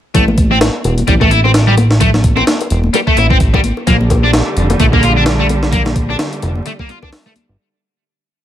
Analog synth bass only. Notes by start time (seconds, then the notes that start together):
0.15 A1
0.85 E1
1.08 A1
2.71 E1
3.17 A1
3.87 A#1
4.57 F1
4.80 A#1
6.43 F1
7.49 G1